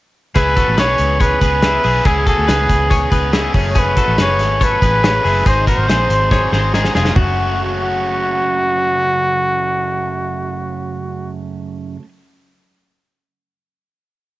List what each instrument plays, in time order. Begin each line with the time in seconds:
0.35 fingered electric bass C#2, overdriven electric guitar C#3 E3 B3 C#4 G#4, clean electric guitar E4 G#4, trumpet B4, kick, closed hi-hat
0.56 overdriven electric guitar B3 C#4 G#4, clean electric guitar F#4 A4, kick, closed hi-hat
0.68 fingered electric bass A1
0.77 fingered electric bass B1, overdriven electric guitar E3 B3 C#4 G#4, clean electric guitar G#4 B4, trumpet C#5, snare, closed hi-hat
0.98 fingered electric bass C#2, closed hi-hat
1.20 clean electric guitar G#4 C#5, trumpet B4, kick, closed hi-hat
1.41 fingered electric bass C#2, overdriven electric guitar B3 C#4 G#4, clean electric guitar G#4 B4, kick, closed hi-hat
1.62 overdriven electric guitar E3 B3 C#4 G#4, clean electric guitar E4 G#4, snare, closed hi-hat
1.84 fingered electric bass B1, overdriven electric guitar B3 C#4 G#4, clean electric guitar E4 G#4, open hi-hat
2.05 fingered electric bass C#2, overdriven electric guitar C#3 E3 B3 C#4 G#4, clean electric guitar E4 G#4, trumpet G#4, kick, closed hi-hat
2.26 overdriven electric guitar B3 C#4 G#4, clean electric guitar F#4 A4, trumpet G#4, kick, closed hi-hat
2.38 fingered electric bass D2
2.47 fingered electric bass C#2, overdriven electric guitar E3 B3 C#4 G#4, clean electric guitar G#4 B4, snare, closed hi-hat
2.69 fingered electric bass C#2, kick, closed hi-hat
2.90 clean electric guitar G#4 C#5, kick, closed hi-hat
3.11 fingered electric bass C#2, overdriven electric guitar B3 C#4 G#4, clean electric guitar G#4 B4, kick, closed hi-hat
3.32 overdriven electric guitar E3 B3 C#4 G#4, clean electric guitar E4 G#4, snare, closed hi-hat
3.53 fingered electric bass F#1, overdriven electric guitar F#3 A3 C#4 G#4, clean electric guitar C#4 G#4, kick, open hi-hat
3.70 trumpet C#5
3.75 overdriven electric guitar F#2 C#3 F#3 A3 C#4 G#4, clean electric guitar C#4 G#4, trumpet B4, kick, closed hi-hat
3.96 overdriven electric guitar F#3 A3 C#4 G#4, clean electric guitar F#4 A4, kick, closed hi-hat
4.08 fingered electric bass A1
4.17 fingered electric bass F#1, overdriven electric guitar F#3 A3 C#4 G#4, clean electric guitar G#4 B4, trumpet C#5, snare, closed hi-hat
4.39 fingered electric bass G#1, snare, closed hi-hat
4.61 clean electric guitar A4 C#5, trumpet B4, kick, closed hi-hat
4.81 fingered electric bass A1, overdriven electric guitar F#3 A3 C#4 G#4, clean electric guitar G#4 B4, kick, closed hi-hat
5.02 overdriven electric guitar F#3 A3 C#4 G#4, clean electric guitar C#4 G#4, snare, closed hi-hat
5.23 fingered electric bass F#1, overdriven electric guitar F#3 A3 C#4 G#4, clean electric guitar E4 G#4, open hi-hat
5.44 fingered electric bass G#1, overdriven electric guitar G#2 D#3 F#3 C4 D#4 G#4, clean electric guitar D#4 G#4, trumpet C5, kick, closed hi-hat
5.66 overdriven electric guitar F#3 C4 D#4 G#4, clean electric guitar F#4 A#4, trumpet C5, kick, closed hi-hat
5.78 fingered electric bass G#1
5.87 fingered electric bass A#1, overdriven electric guitar F#3 C4 D#4 G#4, clean electric guitar G#4 C5, snare, closed hi-hat
6.09 fingered electric bass G#1, closed hi-hat
6.31 clean electric guitar G#4 C#5, kick, snare
6.52 fingered electric bass G#1, overdriven electric guitar F#3 C4 D#4 G#4, clean electric guitar G#4 C5, snare
6.73 overdriven electric guitar F#3 C4 D#4 G#4, clean electric guitar D#4 G#4, snare
6.85 snare
6.95 fingered electric bass F1, overdriven electric guitar F#3 C4 D#4 G#4, clean electric guitar F4 G#4, snare
7.05 snare
7.13 fingered electric bass F#1, overdriven electric guitar F#2 C#3, trumpet F#4, clean electric guitar F#4, kick, floor tom
7.19 overdriven electric guitar F#3 A3
7.23 overdriven electric guitar C#4 G#4